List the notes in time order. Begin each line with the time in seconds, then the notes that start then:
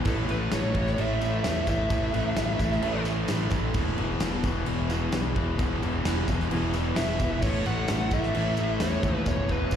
0.05 A1 A2 E3 A3 A4, kick, tambourine, crash
0.28 A1 A2 E3 A3 B4, tambourine, crash
0.50 A1 A2 E3 A3 C#5, snare, tambourine, crash
0.74 A2 E3 A3, kick, crash
0.87 snare
0.97 A1 A2 E3 A3 E5, crash
1.20 A2 E3 A3, tambourine, crash
1.44 E2 A2 E3 A3, snare, tambourine, crash
1.67 A1 A2 E3 A3 E5, kick, tambourine, crash
1.89 A1 A2 E3 A3, kick, tambourine, crash
2.12 A1 A2 E3 A3, tambourine, crash
2.36 A1 A2 E3 A3, snare, tambourine, crash
2.59 A1 A2 E3 A3, kick, tambourine, crash
2.72 snare
2.82 A1 A2 E3 A3, tambourine, crash
3.05 A2 E3 A3, tambourine, crash
3.28 A1 A2 E3 A3, snare, tambourine, crash
3.50 A1 A2 E3 A3, kick, tambourine, crash
3.73 E1 E2 B2 E3, kick, tambourine, crash
3.96 E1 E2 B2 E3, crash
4.20 E1 E2 B2 E3, snare, tambourine, crash
4.44 E2 B2 E3, kick, tambourine, crash
4.66 E1 E2 B2 E3, crash
4.89 E2 B2 E3, tambourine, crash
5.12 B1 E2 B2 E3, snare, tambourine, crash
5.36 E1 E2 B2 E3, kick, crash
5.58 E1 E2 B2 E3, kick, tambourine, crash
5.82 E1 E2 B2 E3, tambourine, crash
6.04 E1 E2 B2 E3, snare, tambourine, crash
6.27 E1 E2 B2 E3, kick, tambourine, crash
6.40 snare
6.50 E1 E2 B2 E3, crash
6.73 E2 B2 E3, tambourine, crash
6.96 E1 E2 B2 E3 E5, snare, tambourine, crash
7.20 E1 E2 B2 E3, kick, tambourine, crash
7.42 A1 A2 E3 A3 C#5, kick, tambourine, crash
7.65 A1 A2 E3 A3 F#5, tambourine, crash
7.88 A1 A2 E3 A3, snare, tambourine, crash
8.11 A2 E3 A3 E5, kick, tambourine, crash
8.23 snare
8.34 A1 A2 E3 A3, crash
8.57 A2 E3 A3, tambourine, crash
8.80 E2 A2 E3 A3 C#5, snare, tambourine, crash
9.03 D#2 A2 E3 A3, kick, tambourine, crash
9.25 E1 E2 B2 E3 C#5, kick, tambourine
9.49 E1 E2 B2 E3 B4, kick, tambourine
9.71 E1 E2 B2 E3, kick, tambourine